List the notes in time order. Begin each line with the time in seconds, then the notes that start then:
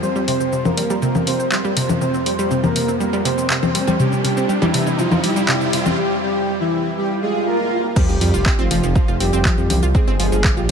Already playing: F2 F3
0.03 G3 C4 C5, riser, shaker
0.16 G3, shaker
0.28 C3 C4 C5, open hi-hat
0.41 C3, shaker
0.53 C3, shaker
0.65 A#3 C4 A#4, low conga, shaker
0.77 G3, open hi-hat
0.90 G3, shaker
1.02 C3 A#3 A#4, shaker
1.15 C3, low conga, shaker
1.27 C3 C4 C5, open hi-hat
1.40 C4, shaker
1.52 G3 C4 C5, clap, shaker
1.65 G3, shaker
1.77 C3, open hi-hat
1.89 C3, low conga, shaker
2.01 C3 C4 C5, shaker
2.14 C4, shaker
2.26 G3 C4 C5, open hi-hat
2.39 G3, shaker
2.51 C3, shaker
2.64 C3 A#3 A#4, low conga, shaker
2.76 C3, open hi-hat
2.88 C4, shaker
3.00 G3 A#3 A#4, shaker
3.13 G3, shaker
3.25 C3 C4 C5, open hi-hat
3.38 C3, shaker
3.50 C3 C4 C5, clap, shaker
3.63 C4, low conga, shaker
3.75 G3, open hi-hat
3.87 G3, low conga, shaker
4.00 C3 G3 G4, shaker
4.12 C3, shaker
4.24 C3 G3 G4, open hi-hat
4.37 C4, shaker
4.49 G3, shaker
4.62 E3 G3 E4, low conga, shaker
4.74 C3, open hi-hat
4.87 C3, shaker
4.99 C3 F3 F4, shaker
5.11 C4, low conga, shaker
5.24 G3 G4, open hi-hat
5.36 G3, shaker
5.48 C3 G3 G4, clap, shaker
5.61 C3, shaker
5.73 C3, open hi-hat
5.86 C4, low conga, shaker
5.98 G3 G4
6.23 G3 G4
6.60 E3 E4
6.97 G3 G4, swell
7.22 G#3 G#4
7.47 A#3 A#4
7.96 F3 G3 G4, kick, crash, sub drop, shaker
8.09 F1 F3, shaker
8.21 F2 F3 G3 G4, open hi-hat
8.34 F1 F4, shaker
8.46 C4, kick, clap, shaker
8.59 F1 F3 C4 F4, shaker
8.71 F1 F3, open hi-hat, low conga
8.83 F1 F3, shaker
8.96 F3 F4, kick, shaker
9.08 F1 F4, shaker
9.20 F1 G3 C4 G4, open hi-hat
9.33 F1 C4, shaker
9.45 F3, kick, clap, shaker
9.58 F2 F3, shaker
9.70 C2 F3, open hi-hat, low conga
9.83 C2 F4, shaker
9.95 G#3 C4 G#4, kick, shaker
10.07 G1 C4, shaker
10.19 G1 F3 G#3 G#4, open hi-hat
10.32 G1 F3, shaker
10.44 kick, clap, shaker
10.57 A#1 G3 F4 G4, shaker